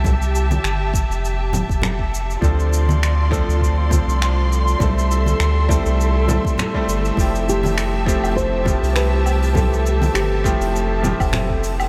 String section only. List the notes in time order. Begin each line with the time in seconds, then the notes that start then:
Already playing: G4 E5 A5
2.43 F4 D5 C6
4.81 A4 E5
7.18 G4 A5